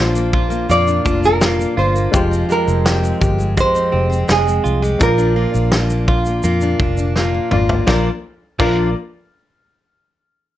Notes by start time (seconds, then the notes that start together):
Already playing: A#1 A#2 F3 A#3 D4 F4 C5 D5
0.15 A#3, shaker
0.33 F4, kick
0.50 A#3, shaker
0.69 F2 A#2 A#3 F4 D5, shaker
0.88 D4, shaker
1.04 F1 A#3 D4 F4 D5, kick, shaker
1.22 D4 A#4, shaker
1.41 A#3 F4, snare, shaker
1.59 A#3, shaker
1.77 G1 F4 C5
1.96 A#3, shaker
2.12 F1 F2 F3 G#3 F4 G4 G5, kick, shaker
2.16 C5
2.31 C4, shaker
2.49 G#3 G4 A#4, shaker
2.67 F1 C4, shaker
2.85 C4 G4, snare, shaker
3.03 G#3, shaker
3.21 G1 G4, kick, shaker
3.38 G#3, shaker
3.57 F2 G#3 G4 C5, kick, shaker
3.75 C4, shaker
3.92 F1 C4 G4
4.10 C4, shaker
4.28 F1 G#3 G#4, snare, shaker
4.46 G#3, shaker
4.64 C2 F4, shaker
4.82 G#3 G4, shaker
4.99 A#1 A#2 F3 A#3 D4 F4, kick, shaker
5.03 A#4 D5
5.18 D4, shaker
5.36 A#3 F4
5.54 A#1 D4, shaker
5.72 D4 F4, snare, shaker
5.90 A#3, shaker
6.08 F4, kick
6.25 A#3, shaker
6.43 F2 A#2 A#3 F4, shaker
6.61 D4, shaker
6.79 F1 D4 F4, kick
6.98 D4, shaker
7.16 A#3 F4, snare
7.34 A#3
7.51 G#1 A#3 D4 F4 D5, mid tom
7.69 A#3, floor tom
7.87 A#1 A#2 F3 A#3 D4 F4 A#4 D5, kick, snare
8.59 A#1 A#2 F3 A#3 D4 F4 A#4 D5, kick, crash